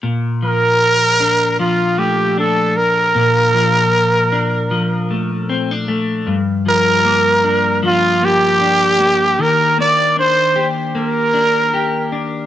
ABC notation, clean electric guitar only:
X:1
M:4/4
L:1/16
Q:"Swing 16ths" 1/4=77
K:Bb
V:1 name="Clean electric guitar"
B,,2 F,4 D2 F,2 A,2 D4 | B,,2 F,4 D2 F,2 A,2 C D A,2 | G,,2 F,2 B,2 D2 F,2 B,2 D2 B,2 | E,2 B,2 D2 G2 B,2 D2 G2 D2 |]